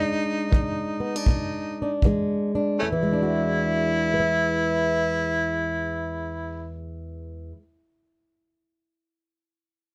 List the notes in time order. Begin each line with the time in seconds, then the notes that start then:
Already playing: E2 G#3 D4
0.00 D#4
0.52 E3, kick
1.00 B3
1.16 D4
1.26 B2, kick
1.82 D4
2.02 E3 G#3, kick
2.55 D4
2.79 E2 A3 C#4 E4
2.92 E3
3.03 G#3
3.13 D4
3.22 F#4
4.14 B4
4.20 E5